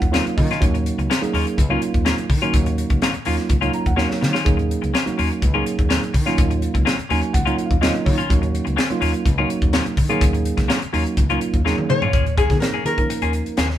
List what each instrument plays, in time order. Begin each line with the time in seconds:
Already playing: tine electric piano F#5
0.02 fretless electric bass D#2, kick, closed hi-hat
0.11 tine electric piano F#3 A#3 C#4 D#4 F4 F5, clean electric guitar F#3 A#3 C#4 F4, snare, closed hi-hat
0.26 muted fretless electric bass stroke, closed hi-hat
0.37 fretless electric bass D#3, tine electric piano D#5, muted clean electric guitar stroke, kick, open hi-hat
0.51 clean electric guitar A#3 C#4 F4, snare, closed hi-hat
0.61 fretless electric bass D#2, tine electric piano F#3 A#3 C#4 D#4 F#4, kick, closed hi-hat
0.74 muted clean electric guitar stroke, closed hi-hat
0.86 closed hi-hat
0.98 fretless electric bass C#2, muted clean electric guitar stroke, closed hi-hat
1.10 clean electric guitar F#3 A#3 C#4 F4, snare, closed hi-hat
1.21 tine electric piano F#3 A#3 C#4 D#4 G#4, muted fretless electric bass stroke, muted clean electric guitar stroke, closed hi-hat
1.33 fretless electric bass D#2, clean electric guitar F#3 A#3 C#4 F4, open hi-hat
1.47 muted clean electric guitar stroke, closed hi-hat
1.58 fretless electric bass C#2, muted clean electric guitar stroke, kick, closed hi-hat
1.69 tine electric piano F#3 A#3 C#4 D#4 F4, clean electric guitar F#3 A#3 C#4 F4
1.82 muted clean electric guitar stroke, closed hi-hat
1.94 fretless electric bass D#2, kick, closed hi-hat
2.05 clean electric guitar F#3 A#3 C#4 F4, snare, closed hi-hat
2.17 muted clean electric guitar stroke, muted fretless electric bass stroke, closed hi-hat
2.29 fretless electric bass D#3, muted clean electric guitar stroke, kick, open hi-hat
2.42 tine electric piano F#3 A#3 C#4 D#4 F#4, clean electric guitar A#3 C#4 F4, closed hi-hat
2.54 fretless electric bass D#2, kick, closed hi-hat
2.66 muted clean electric guitar stroke, closed hi-hat
2.78 closed hi-hat
2.90 fretless electric bass C#2, muted clean electric guitar stroke, kick, closed hi-hat
3.02 clean electric guitar F#3 A#3 C#4 F4, snare, closed hi-hat
3.14 muted clean electric guitar stroke, muted fretless electric bass stroke, closed hi-hat
3.25 fretless electric bass D#2, clean electric guitar F#3 A#3 C#4 F4, tine electric piano F#3 A#3 C#4 D#4 F4, open hi-hat
3.37 muted clean electric guitar stroke, snare, closed hi-hat
3.49 fretless electric bass C#2, muted clean electric guitar stroke, kick, closed hi-hat
3.61 clean electric guitar F#3 A#3 C#4 F4, tine electric piano F#3 A#3 C#4 D#4 F4, closed hi-hat
3.73 tine electric piano A#5, muted clean electric guitar stroke, closed hi-hat
3.86 fretless electric bass D#2, tine electric piano F#5, kick, closed hi-hat
3.96 clean electric guitar F#3 A#3 C#4 F4, tine electric piano F#3 A#3 C#4 D#4 F#4 C#5, snare
4.09 muted clean electric guitar stroke, muted fretless electric bass stroke, snare
4.21 fretless electric bass D#3, muted clean electric guitar stroke, snare
4.33 clean electric guitar A#3 C#4 F4, snare
4.45 fretless electric bass D#2, tine electric piano F#3 A#3 C#4 D#4 G#4, kick, closed hi-hat
4.57 muted clean electric guitar stroke, closed hi-hat
4.71 closed hi-hat
4.82 fretless electric bass C#2, muted clean electric guitar stroke, closed hi-hat
4.94 clean electric guitar F#3 A#3 C#4 F4, snare, closed hi-hat
5.06 tine electric piano F#3 A#3 C#4 D#4 F#4, muted clean electric guitar stroke, muted fretless electric bass stroke, closed hi-hat
5.18 fretless electric bass D#2, clean electric guitar F#3 A#3 C#4 F4, open hi-hat
5.31 muted clean electric guitar stroke, closed hi-hat
5.42 fretless electric bass C#2, muted clean electric guitar stroke, kick, closed hi-hat
5.54 tine electric piano F#3 A#3 C#4 D#4 G#4, clean electric guitar F#3 A#3 C#4 F4
5.65 muted clean electric guitar stroke, closed hi-hat
5.79 fretless electric bass D#2, kick, closed hi-hat
5.89 clean electric guitar F#3 A#3 C#4 F4, snare, closed hi-hat
6.02 muted clean electric guitar stroke, closed hi-hat
6.13 fretless electric bass D#3, muted clean electric guitar stroke, kick, open hi-hat
6.26 tine electric piano F#3 A#3 C#4 D#4 F4, clean electric guitar A#3 C#4 F4, snare, closed hi-hat
6.38 fretless electric bass D#2, kick, closed hi-hat
6.51 muted clean electric guitar stroke, closed hi-hat
6.62 closed hi-hat
6.74 fretless electric bass C#2, muted clean electric guitar stroke, kick, closed hi-hat
6.85 clean electric guitar F#3 A#3 C#4 F4, snare, closed hi-hat
6.98 muted clean electric guitar stroke, muted fretless electric bass stroke, closed hi-hat
7.09 fretless electric bass D#2, clean electric guitar F#3 A#3 C#4 F4, tine electric piano F#3 A#3 C#4 D#4 F#4 G#5, open hi-hat
7.22 muted clean electric guitar stroke, closed hi-hat
7.33 fretless electric bass C#2, tine electric piano F#5, muted clean electric guitar stroke, kick, closed hi-hat
7.45 clean electric guitar F#3 A#3 C#4 F4, tine electric piano F#3 A#3 C#4 D#4 F4, closed hi-hat
7.57 muted clean electric guitar stroke, closed hi-hat
7.66 tine electric piano F5
7.71 fretless electric bass D#2, kick, closed hi-hat
7.81 tine electric piano F#3 A#3 C#4 D#4 F4 D#5, clean electric guitar F#3 A#3 C#4 F4, snare, closed hi-hat
7.94 muted clean electric guitar stroke, closed hi-hat
8.05 fretless electric bass D#3, tine electric piano C#5, muted clean electric guitar stroke, kick, open hi-hat
8.18 clean electric guitar A#3 C#4 F4, closed hi-hat
8.30 fretless electric bass D#2, tine electric piano F#3 A#3 C#4 D#4 F#4, kick, closed hi-hat
8.42 muted clean electric guitar stroke, closed hi-hat
8.55 closed hi-hat
8.65 fretless electric bass C#2, muted clean electric guitar stroke, closed hi-hat
8.76 clean electric guitar F#3 A#3 C#4 F4, snare, closed hi-hat
8.90 tine electric piano F#3 A#3 C#4 D#4 F4, muted clean electric guitar stroke, muted fretless electric bass stroke, closed hi-hat
9.00 fretless electric bass D#2, clean electric guitar F#3 A#3 C#4 F4, open hi-hat
9.13 muted clean electric guitar stroke, closed hi-hat
9.25 fretless electric bass C#2, muted clean electric guitar stroke, kick, closed hi-hat
9.38 clean electric guitar F#3 A#3 C#4 F4, tine electric piano F#3 A#3 C#4 D#4 F#4
9.50 muted clean electric guitar stroke, closed hi-hat
9.62 fretless electric bass D#2, kick, closed hi-hat
9.73 clean electric guitar F#3 A#3 C#4 F4, snare, closed hi-hat
9.85 muted clean electric guitar stroke, muted fretless electric bass stroke, closed hi-hat
9.97 fretless electric bass D#3, muted clean electric guitar stroke, kick, open hi-hat
10.09 tine electric piano F#3 A#3 C#4 D#4 G#4, clean electric guitar A#3 C#4 F4, closed hi-hat
10.21 fretless electric bass D#2, kick, closed hi-hat
10.33 muted clean electric guitar stroke, closed hi-hat
10.45 closed hi-hat
10.57 fretless electric bass C#2, muted clean electric guitar stroke, kick, snare, closed hi-hat
10.68 clean electric guitar F#3 A#3 C#4 F4, snare, closed hi-hat
10.82 muted clean electric guitar stroke, muted fretless electric bass stroke, closed hi-hat
10.93 fretless electric bass D#2, clean electric guitar F#3 A#3 C#4 F4, tine electric piano F#3 A#3 C#4 D#4 F#4, open hi-hat
11.04 muted clean electric guitar stroke, closed hi-hat
11.17 fretless electric bass C#2, muted clean electric guitar stroke, kick, closed hi-hat
11.30 tine electric piano F#3 A#3 C#4 D#4 F4, clean electric guitar F#3 A#3 C#4 F4, closed hi-hat
11.40 muted clean electric guitar stroke, closed hi-hat
11.54 fretless electric bass D#2, kick, closed hi-hat
11.65 clean electric guitar F#3 A#3 C#4 F4, tine electric piano F#3 A#3 C#4 D#4 G#4, snare
11.77 muted clean electric guitar stroke, muted fretless electric bass stroke, high tom
11.89 fretless electric bass D#3, nylon-string guitar C#5, muted clean electric guitar stroke, mid tom
12.02 clean electric guitar A#3 C#4 F4, floor tom
12.13 fretless electric bass D#2, clean electric guitar F3 A#3 C#4 G#4, kick, closed hi-hat
12.26 muted clean electric guitar stroke, closed hi-hat
12.37 clean electric guitar F3 A#3 C#4 G#4, nylon-string guitar G#4, kick, closed hi-hat
12.50 fretless electric bass D#3, tine electric piano F3 A#3 C#4 D#4 G#4, muted clean electric guitar stroke, kick, snare, closed hi-hat
12.60 nylon-string guitar A#4, snare, closed hi-hat
12.73 clean electric guitar A#3 C#4 G#4, muted fretless electric bass stroke
12.85 fretless electric bass D#3, tine electric piano F3 A#3 C#4 D#4 G#4, nylon-string guitar A#4, muted clean electric guitar stroke, closed hi-hat
12.98 tine electric piano F3 A#3 C#4 D#4 A#4, muted clean electric guitar stroke, kick, closed hi-hat
13.10 muted clean electric guitar stroke, closed hi-hat
13.22 fretless electric bass D#2, clean electric guitar F3 A#3 C#4 G#4, closed hi-hat
13.33 muted clean electric guitar stroke, closed hi-hat
13.46 muted fretless electric bass stroke, closed hi-hat
13.57 fretless electric bass D#2, clean electric guitar F3 A#3 C#4 G#4, snare, closed hi-hat
13.70 muted clean electric guitar stroke, snare